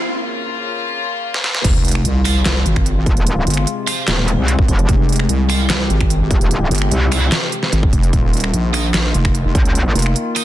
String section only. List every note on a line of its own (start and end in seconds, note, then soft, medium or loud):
0.02 1.63 C#3 medium
0.02 1.63 A#3 medium
0.02 1.63 F4 medium
1.64 8.09 C3 medium
1.64 8.09 G#3 medium
1.64 4.85 F4 loud
4.89 8.10 G4 loud
8.13 10.44 D#3 medium
8.13 10.44 A#3 medium
8.13 10.44 F4 loud